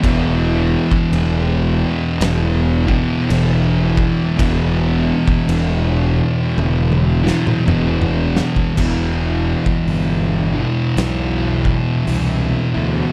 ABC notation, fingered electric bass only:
X:1
M:4/4
L:1/8
Q:"Swing" 1/4=55
K:C
V:1 name="Fingered electric bass" clef=bass
E,,,2 E,,,2 E,,,2 E,,,2 | E,,,2 E,,,2 E,,,2 E,,,2 | E,,,2 G,,,2 B,,,2 C,, D,, |]